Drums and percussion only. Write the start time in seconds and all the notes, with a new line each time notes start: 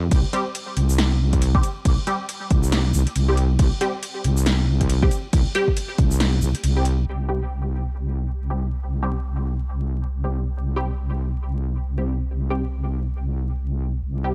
0.11 kick, closed hi-hat, crash
0.33 closed hi-hat
0.55 closed hi-hat, crash
0.77 closed hi-hat
0.89 shaker
0.98 snare, closed hi-hat, crash
1.33 kick, closed hi-hat
1.42 closed hi-hat, crash
1.55 kick
1.63 closed hi-hat, shaker
1.85 kick, closed hi-hat, crash
2.07 closed hi-hat
2.29 closed hi-hat, crash
2.50 kick, closed hi-hat
2.63 shaker
2.72 snare, closed hi-hat, crash
2.94 shaker
3.07 closed hi-hat
3.16 closed hi-hat, crash
3.37 closed hi-hat
3.59 kick, closed hi-hat, crash
3.81 closed hi-hat
4.03 closed hi-hat, crash
4.24 closed hi-hat
4.37 shaker
4.46 snare, closed hi-hat, crash
4.81 kick, closed hi-hat
4.90 closed hi-hat, crash
5.03 kick
5.11 closed hi-hat, shaker
5.33 kick, closed hi-hat, crash
5.55 closed hi-hat
5.68 kick
5.77 closed hi-hat, crash
5.98 kick, closed hi-hat
6.11 shaker
6.20 snare, closed hi-hat, crash
6.42 shaker
6.55 closed hi-hat
6.64 closed hi-hat, crash
6.85 closed hi-hat